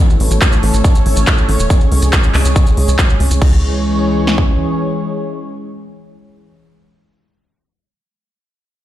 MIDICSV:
0, 0, Header, 1, 4, 480
1, 0, Start_track
1, 0, Key_signature, 4, "minor"
1, 0, Tempo, 428571
1, 1906, Time_signature, 4, 2, 24, 8
1, 9901, End_track
2, 0, Start_track
2, 0, Title_t, "Analog synth pad"
2, 0, Program_c, 0, 89
2, 0, Note_on_c, 0, 52, 88
2, 0, Note_on_c, 0, 57, 78
2, 0, Note_on_c, 0, 61, 78
2, 0, Note_on_c, 0, 69, 77
2, 0, Note_on_c, 0, 73, 96
2, 1886, Note_off_c, 0, 57, 0
2, 1886, Note_off_c, 0, 69, 0
2, 1906, Note_on_c, 0, 56, 78
2, 1906, Note_on_c, 0, 68, 75
2, 3781, Note_off_c, 0, 52, 0
2, 3787, Note_off_c, 0, 61, 0
2, 3787, Note_off_c, 0, 73, 0
2, 3807, Note_off_c, 0, 56, 0
2, 3807, Note_off_c, 0, 68, 0
2, 3824, Note_on_c, 0, 52, 83
2, 3824, Note_on_c, 0, 68, 76
2, 3824, Note_on_c, 0, 73, 94
2, 3825, Note_on_c, 0, 56, 78
2, 3825, Note_on_c, 0, 61, 77
2, 7250, Note_off_c, 0, 52, 0
2, 7250, Note_off_c, 0, 56, 0
2, 7250, Note_off_c, 0, 61, 0
2, 7250, Note_off_c, 0, 68, 0
2, 7250, Note_off_c, 0, 73, 0
2, 9901, End_track
3, 0, Start_track
3, 0, Title_t, "Analog synth bass"
3, 0, Program_c, 1, 38
3, 226, Note_on_c, 1, 33, 93
3, 325, Note_off_c, 1, 33, 0
3, 346, Note_on_c, 1, 33, 78
3, 445, Note_off_c, 1, 33, 0
3, 706, Note_on_c, 1, 33, 92
3, 805, Note_off_c, 1, 33, 0
3, 826, Note_on_c, 1, 33, 80
3, 925, Note_off_c, 1, 33, 0
3, 1186, Note_on_c, 1, 33, 93
3, 1285, Note_off_c, 1, 33, 0
3, 1306, Note_on_c, 1, 33, 81
3, 1405, Note_off_c, 1, 33, 0
3, 1666, Note_on_c, 1, 33, 94
3, 1765, Note_off_c, 1, 33, 0
3, 1786, Note_on_c, 1, 28, 80
3, 1885, Note_off_c, 1, 28, 0
3, 2146, Note_on_c, 1, 37, 92
3, 2245, Note_off_c, 1, 37, 0
3, 2266, Note_on_c, 1, 37, 78
3, 2365, Note_off_c, 1, 37, 0
3, 2626, Note_on_c, 1, 37, 92
3, 2725, Note_off_c, 1, 37, 0
3, 2746, Note_on_c, 1, 37, 78
3, 2844, Note_off_c, 1, 37, 0
3, 3106, Note_on_c, 1, 37, 89
3, 3204, Note_off_c, 1, 37, 0
3, 3226, Note_on_c, 1, 37, 77
3, 3324, Note_off_c, 1, 37, 0
3, 3585, Note_on_c, 1, 37, 92
3, 3684, Note_off_c, 1, 37, 0
3, 3706, Note_on_c, 1, 37, 81
3, 3804, Note_off_c, 1, 37, 0
3, 3826, Note_on_c, 1, 37, 95
3, 5221, Note_off_c, 1, 37, 0
3, 9901, End_track
4, 0, Start_track
4, 0, Title_t, "Drums"
4, 112, Note_on_c, 9, 70, 38
4, 224, Note_off_c, 9, 70, 0
4, 226, Note_on_c, 9, 46, 106
4, 338, Note_off_c, 9, 46, 0
4, 347, Note_on_c, 9, 42, 50
4, 347, Note_on_c, 9, 70, 76
4, 459, Note_off_c, 9, 42, 0
4, 459, Note_off_c, 9, 70, 0
4, 466, Note_on_c, 9, 36, 121
4, 466, Note_on_c, 9, 39, 119
4, 466, Note_on_c, 9, 42, 76
4, 469, Note_on_c, 9, 70, 65
4, 578, Note_off_c, 9, 36, 0
4, 578, Note_off_c, 9, 39, 0
4, 578, Note_off_c, 9, 42, 0
4, 581, Note_off_c, 9, 70, 0
4, 586, Note_on_c, 9, 42, 34
4, 586, Note_on_c, 9, 70, 41
4, 698, Note_off_c, 9, 42, 0
4, 698, Note_off_c, 9, 70, 0
4, 706, Note_on_c, 9, 46, 105
4, 818, Note_off_c, 9, 46, 0
4, 826, Note_on_c, 9, 42, 49
4, 829, Note_on_c, 9, 70, 81
4, 938, Note_off_c, 9, 42, 0
4, 941, Note_off_c, 9, 70, 0
4, 946, Note_on_c, 9, 36, 120
4, 946, Note_on_c, 9, 42, 72
4, 947, Note_on_c, 9, 70, 61
4, 1058, Note_off_c, 9, 36, 0
4, 1058, Note_off_c, 9, 42, 0
4, 1059, Note_off_c, 9, 70, 0
4, 1065, Note_on_c, 9, 70, 41
4, 1066, Note_on_c, 9, 42, 36
4, 1177, Note_off_c, 9, 70, 0
4, 1178, Note_off_c, 9, 42, 0
4, 1185, Note_on_c, 9, 46, 103
4, 1297, Note_off_c, 9, 46, 0
4, 1303, Note_on_c, 9, 70, 76
4, 1306, Note_on_c, 9, 42, 49
4, 1415, Note_off_c, 9, 70, 0
4, 1418, Note_off_c, 9, 42, 0
4, 1426, Note_on_c, 9, 36, 121
4, 1426, Note_on_c, 9, 39, 118
4, 1426, Note_on_c, 9, 42, 75
4, 1426, Note_on_c, 9, 70, 60
4, 1538, Note_off_c, 9, 36, 0
4, 1538, Note_off_c, 9, 39, 0
4, 1538, Note_off_c, 9, 42, 0
4, 1538, Note_off_c, 9, 70, 0
4, 1542, Note_on_c, 9, 70, 37
4, 1654, Note_off_c, 9, 70, 0
4, 1666, Note_on_c, 9, 46, 109
4, 1778, Note_off_c, 9, 46, 0
4, 1786, Note_on_c, 9, 42, 48
4, 1789, Note_on_c, 9, 70, 84
4, 1898, Note_off_c, 9, 42, 0
4, 1901, Note_off_c, 9, 70, 0
4, 1906, Note_on_c, 9, 36, 114
4, 1906, Note_on_c, 9, 42, 75
4, 1907, Note_on_c, 9, 70, 58
4, 2018, Note_off_c, 9, 36, 0
4, 2018, Note_off_c, 9, 42, 0
4, 2019, Note_off_c, 9, 70, 0
4, 2023, Note_on_c, 9, 70, 36
4, 2135, Note_off_c, 9, 70, 0
4, 2146, Note_on_c, 9, 46, 105
4, 2258, Note_off_c, 9, 46, 0
4, 2263, Note_on_c, 9, 70, 76
4, 2266, Note_on_c, 9, 42, 48
4, 2375, Note_off_c, 9, 70, 0
4, 2378, Note_off_c, 9, 42, 0
4, 2379, Note_on_c, 9, 70, 63
4, 2386, Note_on_c, 9, 36, 115
4, 2386, Note_on_c, 9, 39, 114
4, 2386, Note_on_c, 9, 42, 74
4, 2491, Note_off_c, 9, 70, 0
4, 2498, Note_off_c, 9, 36, 0
4, 2498, Note_off_c, 9, 39, 0
4, 2498, Note_off_c, 9, 42, 0
4, 2504, Note_on_c, 9, 70, 38
4, 2506, Note_on_c, 9, 42, 34
4, 2616, Note_off_c, 9, 70, 0
4, 2618, Note_off_c, 9, 42, 0
4, 2626, Note_on_c, 9, 39, 58
4, 2626, Note_on_c, 9, 46, 105
4, 2738, Note_off_c, 9, 39, 0
4, 2738, Note_off_c, 9, 46, 0
4, 2746, Note_on_c, 9, 42, 46
4, 2747, Note_on_c, 9, 70, 74
4, 2858, Note_off_c, 9, 42, 0
4, 2859, Note_off_c, 9, 70, 0
4, 2866, Note_on_c, 9, 36, 120
4, 2866, Note_on_c, 9, 42, 71
4, 2867, Note_on_c, 9, 70, 65
4, 2978, Note_off_c, 9, 36, 0
4, 2978, Note_off_c, 9, 42, 0
4, 2979, Note_off_c, 9, 70, 0
4, 2984, Note_on_c, 9, 70, 35
4, 2986, Note_on_c, 9, 42, 34
4, 3096, Note_off_c, 9, 70, 0
4, 3098, Note_off_c, 9, 42, 0
4, 3106, Note_on_c, 9, 46, 104
4, 3218, Note_off_c, 9, 46, 0
4, 3226, Note_on_c, 9, 42, 47
4, 3234, Note_on_c, 9, 70, 72
4, 3338, Note_off_c, 9, 42, 0
4, 3346, Note_off_c, 9, 70, 0
4, 3346, Note_on_c, 9, 36, 119
4, 3346, Note_on_c, 9, 39, 115
4, 3346, Note_on_c, 9, 42, 72
4, 3352, Note_on_c, 9, 70, 58
4, 3458, Note_off_c, 9, 36, 0
4, 3458, Note_off_c, 9, 39, 0
4, 3458, Note_off_c, 9, 42, 0
4, 3464, Note_off_c, 9, 70, 0
4, 3469, Note_on_c, 9, 70, 42
4, 3581, Note_off_c, 9, 70, 0
4, 3586, Note_on_c, 9, 46, 107
4, 3698, Note_off_c, 9, 46, 0
4, 3703, Note_on_c, 9, 70, 78
4, 3706, Note_on_c, 9, 42, 47
4, 3815, Note_off_c, 9, 70, 0
4, 3818, Note_off_c, 9, 42, 0
4, 3826, Note_on_c, 9, 36, 106
4, 3826, Note_on_c, 9, 49, 82
4, 3938, Note_off_c, 9, 36, 0
4, 3938, Note_off_c, 9, 49, 0
4, 4786, Note_on_c, 9, 38, 58
4, 4898, Note_off_c, 9, 38, 0
4, 4906, Note_on_c, 9, 36, 70
4, 5018, Note_off_c, 9, 36, 0
4, 9901, End_track
0, 0, End_of_file